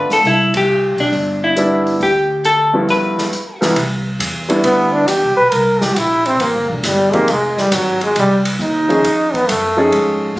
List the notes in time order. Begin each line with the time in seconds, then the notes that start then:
Already playing: A3 B3 D4 F4 B4
0.09 A4, muted upright bass stroke, snare, open hi-hat
0.23 C2 E4, open hi-hat
0.54 G4, kick, ride
0.97 B1 D4, open hi-hat
1.12 G1, open hi-hat
1.44 E4
1.56 G3 B3 D4 E4, closed hi-hat
1.87 open hi-hat
2.00 D2 G4, open hi-hat
2.45 A4, closed hi-hat
2.73 G2 F3 A3 B3 E4
2.89 B4, open hi-hat
3.18 snare
3.33 closed hi-hat
3.61 C2 E3 A3 B3 E4, snare, open hi-hat
3.75 C2, ride
4.19 E2, hi-hat pedal, ride
4.48 G3 A3 B3 D4 E4, ride
4.63 D2 B3, ride
4.92 D4
5.07 E2 G4, hi-hat pedal, ride
5.23 C2
5.37 B1 B4
5.51 C2 A#4, ride
5.81 G4, snare
5.96 A#1 E4, hi-hat pedal, ride
6.26 C4, ride
6.40 A1 A#3, ride
6.54 G1
6.70 E1 D3, kick
6.83 G1 G3, snare, hi-hat pedal, ride
7.13 F3 G#3 A#3 C4 D#4 G4, kick, ride
7.27 F1 G#3, ride
7.58 G3, snare
7.71 G#1 F#3, hi-hat pedal, ride
8.01 G#3, ride
8.16 C2 G3, ride
8.45 ride
8.59 D#2 D#4, hi-hat pedal
8.89 F3 A3 C#4 D#4 G#4, ride
9.04 F2, ride
9.34 B3, kick, ride
9.49 F#2 A3, hi-hat pedal, ride
9.77 F3 C#4 D#4 G#4 A4
9.92 G#2, ride
10.36 A2